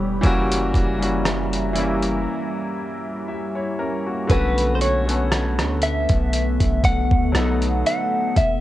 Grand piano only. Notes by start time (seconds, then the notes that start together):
Already playing: E3 A3 B3 C#4 G4
0.21 E3 G3 A#3 C#4
0.26 F#4
0.99 E3 G3 A#3 C#4
1.04 F#4
1.73 E3 G3 A#3 C#4
1.78 E4
3.28 G4 E5
3.55 E4 C#5
3.79 C#4 A#4
4.07 A#3 F#4
4.27 D3 A3 B3 C#4
4.32 F#4
5.06 D3 A3 B3 C#4
5.11 A4
7.32 F#3 A3 B3 D#4
7.37 A4